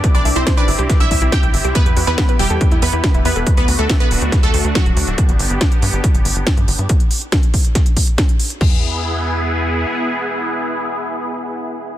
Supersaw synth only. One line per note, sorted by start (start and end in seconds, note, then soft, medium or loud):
0.00 1.74 C4 medium
0.00 3.43 E4 medium
0.00 3.43 G4 medium
1.75 3.45 B3 medium
3.47 5.16 A3 medium
3.47 6.86 D4 medium
3.47 5.16 F#4 medium
5.18 6.88 B3 medium
5.18 6.88 G4 medium
8.61 11.98 B3 medium
8.61 11.98 E4 medium
8.61 11.98 G#4 medium